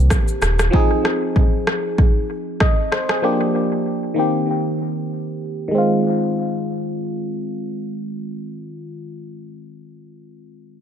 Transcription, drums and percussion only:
0.10 kick, cross-stick, shaker
0.28 shaker
0.42 cross-stick, shaker
0.59 cross-stick, shaker
0.73 kick
1.05 cross-stick
1.36 kick
1.67 cross-stick
1.98 kick
2.60 kick, cross-stick
2.92 cross-stick
3.09 cross-stick

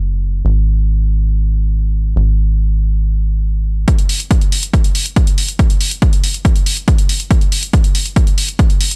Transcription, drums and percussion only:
3.88 kick, closed hi-hat
3.99 closed hi-hat
4.09 open hi-hat
4.20 closed hi-hat
4.31 kick, closed hi-hat
4.41 closed hi-hat
4.52 open hi-hat
4.63 closed hi-hat
4.74 kick, closed hi-hat
4.84 closed hi-hat
4.95 open hi-hat
5.06 closed hi-hat
5.16 kick, closed hi-hat
5.27 closed hi-hat
5.38 open hi-hat
5.49 closed hi-hat
5.59 kick, closed hi-hat
5.70 closed hi-hat
5.81 open hi-hat
5.91 closed hi-hat
6.02 kick, closed hi-hat
6.13 closed hi-hat
6.24 open hi-hat
6.34 closed hi-hat
6.45 kick, closed hi-hat
6.56 closed hi-hat
6.66 open hi-hat
6.77 closed hi-hat
6.88 kick, closed hi-hat
6.98 closed hi-hat
7.09 open hi-hat
7.20 closed hi-hat
7.31 kick, closed hi-hat
7.41 closed hi-hat
7.52 open hi-hat
7.63 closed hi-hat
7.73 kick, closed hi-hat
7.84 closed hi-hat
7.95 open hi-hat
8.06 closed hi-hat
8.16 kick, closed hi-hat
8.27 closed hi-hat
8.38 open hi-hat
8.49 closed hi-hat
8.59 kick, closed hi-hat
8.70 closed hi-hat
8.81 open hi-hat
8.91 closed hi-hat

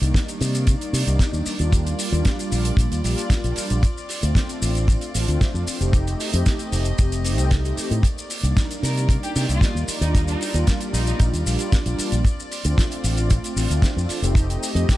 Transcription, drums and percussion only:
0.02 closed hi-hat, shaker
0.14 kick, snare, closed hi-hat, shaker
0.28 closed hi-hat, shaker
0.41 open hi-hat, shaker
0.55 closed hi-hat, shaker
0.67 kick, closed hi-hat, shaker
0.81 closed hi-hat, shaker
0.94 open hi-hat, shaker
1.07 closed hi-hat, shaker
1.19 kick, snare, closed hi-hat, shaker
1.34 shaker
1.46 open hi-hat, shaker
1.59 closed hi-hat, shaker
1.72 kick, closed hi-hat, shaker
1.86 closed hi-hat, shaker
1.99 open hi-hat, shaker
2.13 closed hi-hat, shaker
2.25 kick, snare, closed hi-hat, shaker
2.39 closed hi-hat, shaker
2.52 open hi-hat, shaker
2.65 closed hi-hat, shaker
2.77 kick, closed hi-hat, shaker
2.92 closed hi-hat, shaker
3.04 open hi-hat, shaker
3.18 closed hi-hat, shaker
3.30 kick, snare, closed hi-hat, shaker
3.44 closed hi-hat, shaker
3.56 open hi-hat, shaker
3.70 closed hi-hat, shaker
3.83 kick, closed hi-hat, shaker
3.98 shaker
4.09 open hi-hat, shaker
4.23 closed hi-hat, shaker
4.35 kick, snare, closed hi-hat, shaker
4.49 closed hi-hat, shaker
4.62 open hi-hat, shaker
4.75 closed hi-hat, shaker
4.88 kick, closed hi-hat, shaker
5.01 closed hi-hat, shaker
5.14 open hi-hat, shaker
5.28 closed hi-hat, shaker
5.41 kick, snare, closed hi-hat, shaker
5.55 shaker
5.67 open hi-hat, shaker
5.81 closed hi-hat, shaker
5.93 kick, closed hi-hat, shaker
6.07 closed hi-hat, shaker
6.20 open hi-hat, shaker
6.33 closed hi-hat, shaker
6.46 kick, snare, closed hi-hat, shaker
6.59 closed hi-hat, shaker
6.72 open hi-hat, shaker
6.85 closed hi-hat, shaker
6.98 kick, closed hi-hat, shaker
7.12 closed hi-hat, shaker
7.24 open hi-hat, shaker
7.38 closed hi-hat, shaker
7.51 kick, snare, closed hi-hat, shaker
7.65 closed hi-hat, shaker
7.77 open hi-hat, shaker
7.91 closed hi-hat, shaker
8.03 kick, closed hi-hat, shaker
8.18 shaker
8.30 open hi-hat, shaker
8.44 closed hi-hat, shaker
8.57 kick, snare, closed hi-hat, shaker
8.71 closed hi-hat, shaker
8.83 open hi-hat, shaker
8.97 closed hi-hat, shaker
9.09 kick, closed hi-hat, shaker
9.23 closed hi-hat, shaker
9.36 open hi-hat, shaker
9.49 closed hi-hat, shaker
9.61 kick, snare, closed hi-hat, shaker
9.77 shaker
9.88 open hi-hat, shaker
10.02 closed hi-hat, shaker
10.15 kick, closed hi-hat, shaker
10.28 closed hi-hat, shaker
10.41 open hi-hat, shaker
10.54 closed hi-hat, shaker
10.67 kick, snare, closed hi-hat, shaker
10.81 closed hi-hat, shaker
10.94 open hi-hat, shaker
11.07 closed hi-hat, shaker
11.20 kick, closed hi-hat, shaker
11.34 closed hi-hat, shaker
11.47 open hi-hat, shaker
11.59 closed hi-hat, shaker
11.72 kick, snare, closed hi-hat, shaker
11.86 closed hi-hat, shaker
11.98 open hi-hat, shaker
12.12 closed hi-hat, shaker
12.25 kick, closed hi-hat, shaker
12.40 shaker
12.52 open hi-hat, shaker
12.64 closed hi-hat, shaker
12.78 kick, snare, closed hi-hat, shaker
12.91 closed hi-hat, shaker
13.04 open hi-hat, shaker
13.17 closed hi-hat, shaker
13.30 kick, closed hi-hat, shaker
13.44 closed hi-hat, shaker
13.57 open hi-hat, shaker
13.71 closed hi-hat, shaker
13.82 kick, snare, closed hi-hat, shaker
13.98 shaker
14.09 open hi-hat, shaker
14.24 closed hi-hat, shaker
14.35 kick, closed hi-hat, shaker
14.50 closed hi-hat, shaker
14.63 open hi-hat, shaker
14.76 closed hi-hat, shaker
14.89 kick, snare, closed hi-hat, shaker

